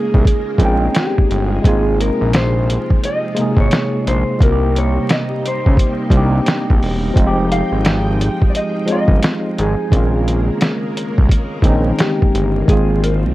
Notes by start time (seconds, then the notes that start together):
Already playing: C#3 G#3 A#3 C#4 D#4 F4 G#4
0.14 C2, kick
0.25 kick, closed hi-hat
0.58 A#1 G#3 C4 C#4, kick, closed hi-hat
0.63 D#4 G5
0.95 G4, snare, closed hi-hat
1.18 kick
1.31 G1, closed hi-hat
1.49 F4
1.62 G#1 C3 F3 G#3 A#3 C4, kick, closed hi-hat
1.67 D#4 F4 G#4
2.01 A#4, closed hi-hat
2.21 A#1
2.33 C5, snare, closed hi-hat
2.70 closed hi-hat
2.90 kick
3.04 D#5, closed hi-hat
3.35 C3 G#3 A#3, closed hi-hat
3.40 D#4 G#4
3.57 G#1 C#5, kick
3.71 snare, closed hi-hat
4.07 A#1 C5, closed hi-hat
4.39 C2 C3 G3 A#3 D#4, kick, closed hi-hat
4.43 D#4 F#4 A#4
4.52 G4
4.76 C#5, closed hi-hat
5.09 D#5, snare, closed hi-hat
5.46 C5, closed hi-hat
5.66 C#2, kick
5.77 kick, closed hi-hat
6.10 C2 G3 A#3 C4, kick, closed hi-hat
6.16 D4 G4
6.22 D#4
6.46 snare, closed hi-hat
6.70 A#1, kick
6.83 E1, open hi-hat
7.13 F1 F3 G#3 C4 G5, kick, closed hi-hat
7.19 D#4 F4
7.27 G4
7.52 F5, closed hi-hat
7.72 G#1
7.85 snare, closed hi-hat
8.21 closed hi-hat
8.42 kick
8.50 D5
8.55 D#5, closed hi-hat
8.85 F3 G#3 C4, closed hi-hat
8.91 D#4 F4 D#5
9.08 G1, kick
9.23 snare, closed hi-hat
9.58 G#1 G#4, closed hi-hat
9.90 A#1 C#3 D#3 G#3 A#3 C4, kick, closed hi-hat
9.95 C#4 F4
10.28 closed hi-hat
10.61 snare, closed hi-hat
10.97 closed hi-hat
11.18 C2, kick
11.29 kick, closed hi-hat
11.62 A#1 D#3 G#3 C4, kick, closed hi-hat
11.67 C#4 D#4
11.99 G4, snare, closed hi-hat
12.22 kick
12.35 G1, closed hi-hat
12.65 G#1 D#3 F3 G#3 A#3 C4 G#4, kick, closed hi-hat
12.71 C4 F4
13.03 A#4, closed hi-hat
13.24 C2